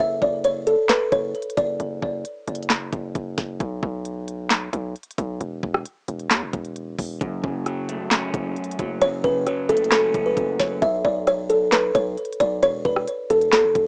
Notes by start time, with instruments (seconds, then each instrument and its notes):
0.00 808-style bass F#1, kalimba E5
0.22 808-style bass F#1, kalimba D5, kick
0.44 kalimba C#5, closed hi-hat
0.67 kalimba A4, closed hi-hat
0.89 kalimba B4, snare, clap, closed hi-hat
1.12 808-style bass F#1, kalimba C#5, kick, closed hi-hat
1.35 closed hi-hat
1.42 closed hi-hat
1.50 closed hi-hat
1.57 808-style bass F#1, kalimba D5, kick, closed hi-hat
1.80 808-style bass F#1, closed hi-hat
2.02 808-style bass F#1, kick
2.25 closed hi-hat
2.47 808-style bass F#1, closed hi-hat
2.55 closed hi-hat
2.62 closed hi-hat
2.70 snare, clap, closed hi-hat
2.92 808-style bass F#1, kick, closed hi-hat
3.15 808-style bass F#1, kick, closed hi-hat
3.38 808-style bass F#1, kick, snare, closed hi-hat
3.60 808-style bass B1, kick, closed hi-hat
3.83 808-style bass B1, kick
4.05 closed hi-hat
4.28 closed hi-hat
4.50 snare, clap, closed hi-hat
4.73 808-style bass B1, kick, closed hi-hat
4.96 closed hi-hat
5.03 closed hi-hat
5.11 closed hi-hat
5.18 808-style bass B1, kick, closed hi-hat
5.41 808-style bass E1, closed hi-hat
5.63 808-style bass E1, kick
5.74 cross-stick
5.86 closed hi-hat
6.08 808-style bass E1, closed hi-hat
6.20 closed hi-hat
6.31 808-style bass E2, snare, clap, closed hi-hat
6.42 808-style bass E1
6.53 808-style bass E1, kick, closed hi-hat
6.65 closed hi-hat
6.76 closed hi-hat
6.99 808-style bass E1, kick, open hi-hat
7.21 808-style bass F#1, clean electric guitar F#2, kick, closed hi-hat
7.44 808-style bass F#1, clean electric guitar C#3, kick
7.66 clean electric guitar F#3, cross-stick, closed hi-hat
7.89 clean electric guitar A3, closed hi-hat
8.11 clean electric guitar C#4, snare, clap, closed hi-hat
8.34 808-style bass F#1, clean electric guitar F#2, kick, closed hi-hat
8.56 closed hi-hat
8.64 closed hi-hat
8.71 closed hi-hat
8.79 808-style bass F#1, clean electric guitar F#3, kick, closed hi-hat
9.01 808-style bass F#1, clean electric guitar F#2, kalimba C#5, closed hi-hat
9.24 808-style bass F#1, clean electric guitar C#3, kalimba B4, kick
9.47 clean electric guitar F#3, cross-stick, closed hi-hat
9.69 808-style bass F#1, clean electric guitar A3, kalimba A4, closed hi-hat
9.77 closed hi-hat
9.84 closed hi-hat
9.92 clean electric guitar C#4, kalimba A4, snare, clap, closed hi-hat
10.14 808-style bass F#1, clean electric guitar F#2, kick, closed hi-hat
10.26 kalimba B4
10.37 808-style bass F#1, kick, closed hi-hat
10.59 808-style bass F#1, clean electric guitar F#3, kalimba C#5, kick, snare, closed hi-hat
10.82 808-style bass B1, kalimba E5, kick, closed hi-hat
11.05 808-style bass B1, kalimba D5, kick
11.27 kalimba C#5, cross-stick, closed hi-hat
11.50 kalimba A4, closed hi-hat
11.72 kalimba B4, snare, clap, closed hi-hat
11.95 808-style bass B1, kalimba C#5, kick, closed hi-hat
12.17 closed hi-hat
12.25 closed hi-hat
12.32 closed hi-hat
12.40 808-style bass B1, kalimba D5, kick, closed hi-hat
12.62 808-style bass E1, kalimba C#5, closed hi-hat
12.85 808-style bass E1, kalimba B4, kick
12.96 cross-stick
13.07 closed hi-hat
13.30 808-style bass E1, kalimba A4, closed hi-hat
13.41 closed hi-hat
13.53 808-style bass E2, kalimba A4, snare, clap, closed hi-hat
13.64 808-style bass E1
13.75 808-style bass E1, kick, closed hi-hat